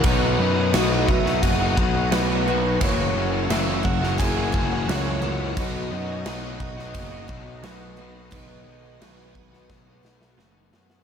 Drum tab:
CC |x---x---x---x---|x---x---x---x---|x---x---x---x---|x---x-----------|
SD |----o--o----o---|----o--o----o---|----o--o----o---|----o--oo-ooo-oo|
BD |o-----o-o-o-----|o-----o-o-o-----|o-----o-o-o-----|o-----o-o-------|